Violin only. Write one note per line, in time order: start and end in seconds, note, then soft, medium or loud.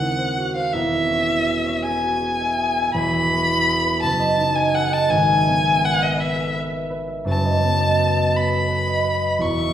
0.00 0.55 F#5 medium
0.56 0.74 F5 medium
0.73 1.84 E5 medium
1.85 2.93 G#5 medium
2.95 4.00 B5 loud
4.02 4.57 A5 loud
4.55 4.76 G#5 medium
4.74 4.94 F#5 medium
4.93 5.12 A5 loud
5.10 5.86 G#5 loud
5.85 6.04 F#5 loud
6.03 6.22 D#5 medium
6.20 6.56 E5 medium
7.29 8.38 A5 loud
8.36 9.43 B5 loud
9.41 9.73 C#6 loud